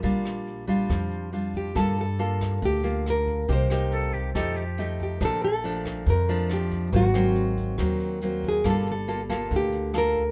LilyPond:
<<
  \new Staff \with { instrumentName = "Nylon-string guitar" } { \time 4/4 \key bes \major \tempo 4 = 139 bes'2. r8 g'8 | \key g \minor a'8 a'4. g'4 bes'4 | c''2.~ c''8 g'8 | a'8 a'4. bes'4 g'4 |
ges'2.~ ges'8 aes'8 | a'8 a'4. g'4 bes'4 | }
  \new Staff \with { instrumentName = "Flute" } { \time 4/4 \key bes \major r1 | \key g \minor r1 | r4 a'8 g'8 a'8 g'8. r8. | r1 |
r1 | r1 | }
  \new Staff \with { instrumentName = "Nylon-string guitar" } { \time 4/4 \key bes \major << { <g d' f'>4. <g d' f'>4. <g d' f'>4 | \key g \minor <bes f' a'>8 r8 <bes f' a'>4. <bes f'>4. | <bes ees' g'>8 <bes ees' g'>4. <a ees' g'>8 r8 <a ees' g'>4 | <f a d'>8 r8 <f a d'>4 r8 <f a d'>4. |
<ges bes c'>8 <ges bes c'>4. <ges bes c'>4 <ges bes c'>4 | <bes f' a'>8 r8 <bes f' a'>8 <bes f' a'>4. <bes f' a'>8 r8 | } \\ { bes,2 f2 | g2 d2 | c2 f2 | bes,2 f,2 |
aes,2 ees2 | g2 d2 | } >> }
  \new Staff \with { instrumentName = "Upright bass" } { \clef bass \time 4/4 \key bes \major bes,,2 f,2 | \key g \minor g,2 d,2 | c,2 f,2 | bes,,2 f,2 |
aes,,2 ees,2 | g,,2 d,2 | }
  \new DrumStaff \with { instrumentName = "Drums" } \drummode { \time 4/4 <hh bd>8 <hh ss>8 hh8 <hh bd>8 <hh bd ss>8 hh8 hh8 <hh bd>8 | <hh bd ss>8 hh8 hh8 <hh bd ss>8 <hh bd>8 hh8 <hh ss>8 <hh bd>8 | <hh bd>8 <hh ss>8 hh8 <hh bd>8 <hh bd ss>8 hh8 hh8 <hh bd>8 | <hh bd ss>8 hh8 hh8 <hh bd ss>8 <hh bd>8 hh8 <hh ss>8 <hh bd>8 |
<hh bd>8 <hh ss>8 hh8 <hh bd>8 <hh bd ss>8 hh8 hh8 <hh bd>8 | <hh bd ss>8 hh8 hh8 <hh bd ss>8 <hh bd>8 hh8 <hh ss>8 <hh bd>8 | }
>>